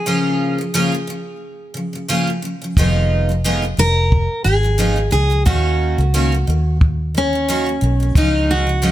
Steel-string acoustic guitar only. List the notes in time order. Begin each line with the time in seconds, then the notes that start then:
Already playing: G#4
3.79 A#4
4.44 G#4
5.12 G#4
5.46 F#4
7.18 C#4
8.18 D#4
8.51 F#4